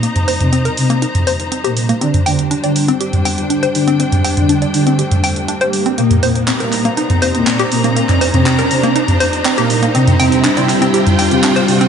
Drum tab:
HH |xxoxxxoxxxoxxxox|xxoxxxoxxxoxxxox|xxoxxxoxxxoxxxox|xxoxxxoxxxoxxxox|
CP |----------------|----------------|----------------|----x-x-----x---|
T2 |-o-o-----o------|-o-------o------|-o-o-----o------|-o-------o------|

HH |xxoxxxoxxxoxxxox|xxoxxxoxxxoxxxox|
CP |-x--x-------x---|----x-x-----x---|
T2 |-o-o-----o------|-o-------o------|